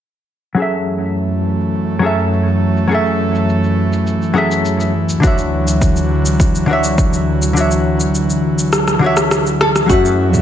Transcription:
0.55 analog synth pad E3 A3, hollow-body jazz guitar F#3 C#4 G#4, shaker
0.59 analog synth pad F#2, hollow-body jazz guitar A4 E5
0.73 shaker
1.02 shaker
1.17 shaker
1.32 shaker
1.60 shaker
1.75 shaker
1.90 shaker
1.99 hollow-body jazz guitar F#3 C#4 G#4
2.05 hollow-body jazz guitar A4 E5
2.19 shaker
2.33 shaker
2.48 shaker
2.77 shaker
2.87 hollow-body jazz guitar F#3 C#4 G#4, shaker
2.93 hollow-body jazz guitar A4 E5
3.06 shaker
3.35 shaker
3.49 shaker
3.64 shaker
3.93 shaker
4.07 shaker
4.22 shaker
4.34 hollow-body jazz guitar F#3 C#4 G#4 A4
4.38 hollow-body jazz guitar E5
4.51 shaker
4.65 shaker
4.80 shaker
4.95 analog synth pad D2 F#3
5.09 shaker
5.20 hollow-body jazz guitar D3 D4 F#4, kick, shaker
5.25 hollow-body jazz guitar C#5 E5
5.38 shaker
5.68 shaker
5.82 kick, shaker
5.96 shaker
6.26 shaker
6.40 kick, shaker
6.55 shaker
6.66 hollow-body jazz guitar D3 D4 F#4
6.71 hollow-body jazz guitar C#5 E5
6.84 shaker
6.98 kick, shaker
7.13 shaker
7.42 shaker
7.53 hollow-body jazz guitar D3 D4 F#4, shaker
7.58 hollow-body jazz guitar C#5 E5
7.71 shaker
8.00 shaker
8.15 shaker
8.30 shaker
8.59 shaker
8.73 cross-stick, shaker
8.88 cross-stick, shaker
8.99 hollow-body jazz guitar D3 D4 F#4
9.04 hollow-body jazz guitar C#5 E5
9.17 cross-stick, shaker
9.31 cross-stick, shaker
9.47 shaker
9.61 nylon-string guitar A4, cross-stick
9.76 cross-stick, shaker
9.86 fretless electric bass F#2, hollow-body jazz guitar F#3 C#4 G#4, analog synth pad F#3 A3 E4, nylon-string guitar F#4, kick, shaker
9.91 hollow-body jazz guitar A3 E5
10.05 shaker
10.33 fretless electric bass E2, mid tom, shaker

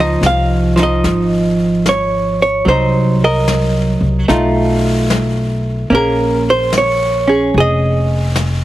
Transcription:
Already playing: upright bass C#2, hollow-body jazz guitar F3 F4
0.00 hollow-body jazz guitar D#4 D#5
0.21 upright bass C2, snare, hi-hat pedal
0.26 hollow-body jazz guitar F5
0.76 hollow-body jazz guitar F3 D#4, snare
0.83 hollow-body jazz guitar D#5
1.04 upright bass G#1, brush sweep, snare
1.86 hollow-body jazz guitar C#5, snare, hi-hat pedal
2.42 hollow-body jazz guitar C#5
2.65 upright bass C2, hollow-body jazz guitar F#3 A#3 C5, brush sweep
2.70 hollow-body jazz guitar D#4
3.24 hollow-body jazz guitar A#4 D#5
3.48 snare, hi-hat pedal
4.01 upright bass C2
4.28 upright bass B1, hollow-body jazz guitar A3 D#4 F4, brush sweep, snare
5.10 snare, hi-hat pedal
5.90 upright bass A#1, hollow-body jazz guitar A#3 C#4, brush sweep
5.94 hollow-body jazz guitar G#4 A#4
6.50 hollow-body jazz guitar C5
6.73 snare, hi-hat pedal
6.78 hollow-body jazz guitar C#5
7.28 hollow-body jazz guitar C#4 G#4
7.54 upright bass F1, hollow-body jazz guitar G#4, brush sweep
7.60 hollow-body jazz guitar D#5
8.36 snare, hi-hat pedal

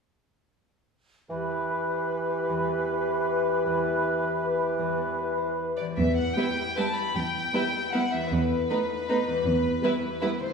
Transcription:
1.30 harp E2, bassoon E3, clarinet G4, oboe B4, flute section B5
1.50 harp G4
1.70 harp B4
1.91 harp C5
2.11 harp B4
2.30 harp G4
2.49 harp E2
2.67 harp B3
2.88 harp B4
3.09 harp C5
3.28 harp B4
3.47 harp G4
3.66 harp E2
3.84 harp B3
4.03 harp B4
4.22 harp C5
4.42 harp B4
4.61 harp G4
4.79 harp E2
4.97 harp B3
5.18 harp B4
5.38 harp C5
5.59 harp B4
5.78 harp E2 G4, violin section D5
5.86 harp B3
5.90 harp G4
5.95 cello section E2, harp B4, violin section E5
6.16 violin section F#5
6.36 viola section G3 B3, violin section E4 B4 G5
6.77 viola section G3 B3, violin section E4 B4 A5
6.98 violin section B5
7.15 cello section E2, violin section G5
7.54 viola section G3 B3, violin section E4 B4
7.93 viola section G3 B3, violin section E4 B4 F#5
8.13 harp E2, violin section E5
8.18 harp D#4
8.22 harp A4
8.27 harp B4
8.31 cello section E2, violin section B4
8.70 viola section A3 B3, violin section D#4 B4
9.09 viola section A3 B3, violin section D#4 B4
9.27 harp E2
9.31 harp B3
9.36 harp G4
9.41 harp B4
9.45 cello section E2
9.83 viola section G3 B3, violin section E4 B4
10.21 viola section G3 B3, violin section E4 B4
10.40 harp D3, violin section C5
10.45 harp B3
10.49 harp F#4

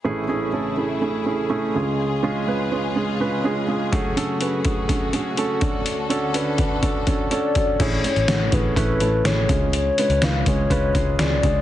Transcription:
0.04 grand piano A1 A2 A3 C#4 E4 G#4, string section C#3 A3 E4 G#4
0.28 grand piano A3 C#4 E4 G#4
0.52 grand piano A3 C#4 E4 A4
0.77 grand piano A3 C#4 E4 G#4
1.01 grand piano A3 C#4 E4 G#4
1.26 grand piano A3 C#4 E4 G#4
1.50 grand piano A3 C#4 E4 G#4
1.74 grand piano C#2 C#3 G#3 C#4 F4 G#4, string section C#3 G#3 F4
2.23 grand piano G#3 C#4 F4 G#4
2.47 grand piano G#3 C#4 F4 B4
2.71 grand piano G#3 C#4 F4 B4
2.96 grand piano G#3 C#4 F4 G#4
3.20 grand piano G#3 C#4 F4 B4
3.44 grand piano G#3 C#4 F4 G#4
3.68 grand piano G#3 C#4 F4 G#4
3.92 grand piano F#1 F#2 A3 C#4 F#4 G#4, string section A3 F#4, kick, closed hi-hat
4.16 grand piano A3 C#4 F#4 A4, closed hi-hat
4.40 grand piano A3 C#4 F#4 B4, closed hi-hat
4.65 grand piano A3 C#4 F#4 G#4, kick, closed hi-hat
4.89 grand piano A3 C#4 F#4 G#4, kick, closed hi-hat
5.13 grand piano A3 C#4 F#4 G#4, closed hi-hat
5.37 grand piano A3 C#4 F#4 A4, closed hi-hat
5.61 grand piano D2 D3 C#4 D4 F#4, string section D3 A4, kick, closed hi-hat
5.86 closed hi-hat
6.10 grand piano C#4 D4 F#4 A4, closed hi-hat
6.34 grand piano C#4 D4 F#4 B4, closed hi-hat
6.58 grand piano C#4 D4 F#4, kick, closed hi-hat
6.82 grand piano C#4 D4 F#4 A4, kick, closed hi-hat
7.07 grand piano C#4 D4 F#4 A4, kick, closed hi-hat
7.31 grand piano C#4 D4 F#4 A4, soft synth lead D5, closed hi-hat
7.55 grand piano D4 F#4, kick, closed hi-hat
7.80 picked electric bass A1, grand piano A2 A3 C#4 E4 G#4, soft synth lead C#5, kick, closed hi-hat, crash
8.04 grand piano A3 C#4 E4 G#4, soft synth lead C#5, closed hi-hat
8.16 picked electric bass A1, closed hi-hat
8.28 picked electric bass A1, grand piano A3 C#4 E4 F#4, snare, closed hi-hat
8.52 picked electric bass A1, grand piano A3 C#4 E4 G#4, soft synth lead B4, kick, closed hi-hat
8.76 picked electric bass A1, grand piano A3 C#4 E4 B4, soft synth lead B4, kick, closed hi-hat
9.00 picked electric bass A1, grand piano A3 C#4 E4 A4, closed hi-hat
9.24 picked electric bass A1, grand piano A3 C#4 E4 G#4, soft synth lead C#5, snare, closed hi-hat
9.49 picked electric bass C#2, grand piano C#3 G#3 C#4 F4 G#4, kick, closed hi-hat
9.73 soft synth lead C#5, closed hi-hat
9.98 grand piano G#3 C#4 F4 B4, closed hi-hat
10.09 picked electric bass C#2, closed hi-hat
10.22 picked electric bass C#2, grand piano G#3 C#4 F4 B4, soft synth lead F5, snare, closed hi-hat
10.46 picked electric bass C#2, grand piano G#3 C#4 F4 G#4, soft synth lead C#5, kick, closed hi-hat
10.70 picked electric bass C#2, grand piano G#3 C#4 F4 B4, kick, closed hi-hat
10.94 picked electric bass C#2, grand piano G#3 C#4 F4 G#4, kick, closed hi-hat
11.19 picked electric bass C#2, grand piano G#3 C#4 F4 G#4, soft synth lead D5, snare, closed hi-hat
11.43 picked electric bass C#2, grand piano G#3 C#4 F4 G#4, kick, closed hi-hat

